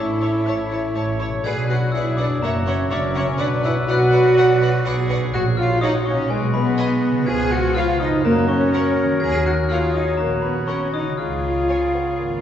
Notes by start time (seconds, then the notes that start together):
Already playing: A1 A2 A3 C#4 E4 A4 C#5 E6
0.00 E4 E5
0.22 C#5 A5
0.46 A1 C#5 A5
0.70 C#5 A5
0.95 A1 C#5 A5
1.20 C#5 A5
1.27 B2
1.32 B3
1.36 D4
1.44 B1 F#3 G#4 B4 D5 F#5 G#5 G#6
1.67 F#4 B4 D5 F#5 F#6
1.92 B1 E4 G#4 B4 D5 E5 F#5 E6
2.17 D4 B4 D5 F#5 D6
2.26 F#2
2.42 F#1 A#3 F#4 A#4 C#5 E5 F#5 A#5
2.67 C#4 C#5 E5 F#5 C#6
2.90 F#1 D4 A#4 C#5 D5 E5 F#5 D6
3.15 C#4 C#5 E5 F#5 C#6
3.22 B2
3.27 B3
3.31 F#4
3.38 B1 D4 B4 D5 F#5 D6
3.63 E4 B4 D5 E5 F#5 E6
3.88 B1 F#4 B4 D5 F#5 F#6
4.12 B4 D5 F#5
4.37 B1 B4 D5 F#5
4.61 B4 D5 F#5
4.85 B1 G#4 B4 D5 F#5
5.09 B4 D5 F#5
5.16 A#2
5.20 C#4
5.25 F#4
5.29 F#4 C#5
5.33 A#1 F#3 F#4 C#5 F#5 F#6
5.57 F4 F5 F6
5.81 D#4 F#4 C#5 D#5 F#5 D#6
6.05 C#4 C#5 C#6
6.12 B2
6.17 D#4
6.21 G#4
6.26 B4
6.30 B1 G#3 G#4 B4 G#5
6.54 B3 B4 B5
6.78 B4 D#5 G#5
7.09 C#3
7.14 C#4
7.19 F4
7.26 C#2 F3 F4 G#4 G#5 G#6
7.50 F#4 F#5 F#6
7.75 F4 B4 C#5 F5 F6
7.99 D#4 D#5 D#6
8.07 F#2
8.16 F#4
8.24 F#2 F#3 A#3 F#4 A#4 A#5
8.48 C#4 C#5 C#6
8.73 A#4 C#5 F#5
9.04 D#3
9.20 D#2 G#4 C#5 G#5 G#6
9.45 F#4 F#5 F#6
9.69 F4 G#4 A#4 C#5 F5 F#5 F6
9.94 D#4 D#5 D#6
10.17 A#1 A#3 F#4 A#4 A#5
10.42 B3 B4 B5
10.67 C#4 A#4 C#5 F#5 C#6
10.93 D#4 D#5 D#6
11.00 C#3
11.05 C#4
11.17 C#2 G#3 F4 G#4 F5 F6
11.69 C#4 C#5 G#5
11.95 B3
12.19 G#1 A#3